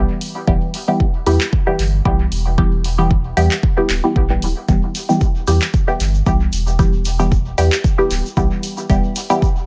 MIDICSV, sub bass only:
0, 0, Header, 1, 2, 480
1, 0, Start_track
1, 0, Key_signature, 1, "minor"
1, 0, Tempo, 526316
1, 433, Time_signature, 4, 2, 24, 8
1, 8811, End_track
2, 0, Start_track
2, 0, Title_t, "Sub bass"
2, 0, Program_c, 0, 38
2, 433, Note_on_c, 0, 28, 97
2, 538, Note_off_c, 0, 28, 0
2, 1153, Note_on_c, 0, 40, 102
2, 1258, Note_off_c, 0, 40, 0
2, 1633, Note_on_c, 0, 31, 101
2, 1831, Note_off_c, 0, 31, 0
2, 1873, Note_on_c, 0, 35, 84
2, 2072, Note_off_c, 0, 35, 0
2, 2113, Note_on_c, 0, 28, 85
2, 3040, Note_off_c, 0, 28, 0
2, 3073, Note_on_c, 0, 40, 104
2, 3178, Note_off_c, 0, 40, 0
2, 3552, Note_on_c, 0, 26, 82
2, 3658, Note_off_c, 0, 26, 0
2, 3793, Note_on_c, 0, 33, 90
2, 3991, Note_off_c, 0, 33, 0
2, 4033, Note_on_c, 0, 26, 106
2, 4138, Note_off_c, 0, 26, 0
2, 4273, Note_on_c, 0, 28, 99
2, 4378, Note_off_c, 0, 28, 0
2, 4993, Note_on_c, 0, 40, 106
2, 5098, Note_off_c, 0, 40, 0
2, 5473, Note_on_c, 0, 31, 98
2, 5671, Note_off_c, 0, 31, 0
2, 5713, Note_on_c, 0, 35, 85
2, 5911, Note_off_c, 0, 35, 0
2, 5953, Note_on_c, 0, 28, 87
2, 6880, Note_off_c, 0, 28, 0
2, 6913, Note_on_c, 0, 40, 102
2, 7018, Note_off_c, 0, 40, 0
2, 7393, Note_on_c, 0, 26, 81
2, 7498, Note_off_c, 0, 26, 0
2, 7633, Note_on_c, 0, 35, 101
2, 7738, Note_off_c, 0, 35, 0
2, 8113, Note_on_c, 0, 28, 101
2, 8218, Note_off_c, 0, 28, 0
2, 8811, End_track
0, 0, End_of_file